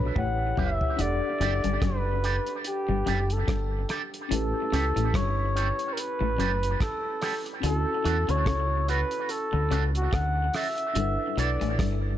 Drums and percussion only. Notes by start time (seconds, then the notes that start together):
0.16 kick, mid tom
0.57 floor tom
0.81 floor tom
0.99 closed hi-hat
1.41 closed hi-hat
1.64 closed hi-hat
1.82 kick, cross-stick, closed hi-hat
2.24 closed hi-hat
2.47 closed hi-hat
2.64 closed hi-hat
3.07 closed hi-hat
3.30 closed hi-hat
3.48 kick, cross-stick, closed hi-hat
3.89 cross-stick, closed hi-hat
4.14 closed hi-hat
4.32 closed hi-hat
4.73 closed hi-hat
4.97 closed hi-hat
5.14 kick, cross-stick, closed hi-hat
5.57 closed hi-hat
5.79 closed hi-hat
5.97 closed hi-hat
6.40 closed hi-hat
6.63 closed hi-hat
6.81 kick, cross-stick, closed hi-hat
7.22 cross-stick, open hi-hat
7.46 closed hi-hat
7.63 closed hi-hat
8.05 closed hi-hat
8.29 closed hi-hat
8.46 kick, cross-stick, closed hi-hat
8.88 closed hi-hat
9.11 closed hi-hat
9.29 closed hi-hat
9.71 closed hi-hat
9.95 closed hi-hat
10.13 kick, cross-stick, closed hi-hat
10.54 cross-stick, open hi-hat
10.78 closed hi-hat
10.95 closed hi-hat
11.38 closed hi-hat
11.61 closed hi-hat
11.79 kick, cross-stick, closed hi-hat